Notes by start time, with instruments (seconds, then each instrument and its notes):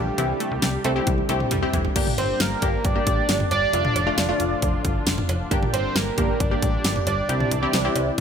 Already playing: fm bass A#1, analog synth pad D3 F3 A3 D4 F4, analog synth lead G4
0.18 fm bass C2, analog synth pad C3 G3 G4, synth arpeggio sound E3, analog polysynth C4 E4 G4, closed hi-hat
0.40 synth arpeggio sound A3, closed hi-hat
0.52 fm bass C2
0.62 fm bass C2, synth arpeggio sound G3, snare, closed hi-hat
0.84 fm bass C2, synth arpeggio sound A3, analog polysynth C4 E4 A4, closed hi-hat
0.96 analog polysynth C4 E4 G4
1.07 fm bass C2, kick, closed hi-hat, high tom
1.18 high tom
1.29 fm bass C2, synth arpeggio sound A3, analog polysynth C4 E4 G4, closed hi-hat
1.40 mid tom
1.51 fm bass C2, synth arpeggio sound G3, closed hi-hat, mid tom
1.62 analog polysynth C4 E4 G4
1.73 fm bass F1, synth arpeggio sound E3, closed hi-hat, floor tom
1.85 floor tom
1.96 fm bass G1, analog synth pad A#2 D3 G3 D4 G4, analog polysynth A#3 D4 G4, kick, closed hi-hat, crash
2.07 mid tom
2.18 fm bass G1, analog synth lead C5, closed hi-hat, cowbell
2.40 fm bass G1, analog synth lead A#4, snare, closed hi-hat
2.62 fm bass G1, analog polysynth A#3 D4 G4, kick, closed hi-hat
2.85 fm bass G1, analog synth lead D5, kick, closed hi-hat
2.95 analog polysynth A#3 D4 G4
3.07 fm bass A1, kick, closed hi-hat
3.29 fm bass G1, snare, closed hi-hat
3.40 mid tom
3.51 fm bass G1, analog synth lead D5, closed hi-hat, cowbell
3.73 fm bass F1, analog synth pad A2 F3 F4, analog polysynth A3 D4 F4, closed hi-hat
3.85 mid tom
3.96 fm bass F1, closed hi-hat, cowbell
4.07 analog polysynth A3 D4 F4
4.18 fm bass F1, snare, closed hi-hat
4.29 analog polysynth A3 D4 F4
4.40 fm bass F1, closed hi-hat
4.62 fm bass F1, kick, closed hi-hat
4.85 fm bass G1, kick, closed hi-hat
5.07 fm bass F1, snare, closed hi-hat
5.18 mid tom
5.29 fm bass F1, closed hi-hat, cowbell
5.51 fm bass G1, analog synth pad A#2 G3 G4, analog polysynth A#3 D4 G4, kick, closed hi-hat
5.63 mid tom
5.73 fm bass G1, analog synth lead C5, closed hi-hat, cowbell
5.96 fm bass G1, analog synth lead A#4, snare, closed hi-hat
6.18 fm bass G1, analog polysynth A#3 D4 G4, kick, closed hi-hat
6.40 fm bass G1, analog synth lead D5, kick, closed hi-hat
6.51 analog polysynth A#3 D4 G4
6.62 fm bass A1, kick, closed hi-hat
6.84 fm bass G1, snare, closed hi-hat
6.96 mid tom
7.07 fm bass G1, analog synth lead D5, closed hi-hat, cowbell
7.29 fm bass C2, analog synth pad C3 E3 E4, analog polysynth C4 E4 G4, closed hi-hat
7.40 mid tom
7.51 fm bass C2, closed hi-hat
7.62 analog polysynth C4 E4 G4
7.73 fm bass C2, snare, closed hi-hat
7.85 analog polysynth C4 E4 G4
7.96 fm bass C2, closed hi-hat, cowbell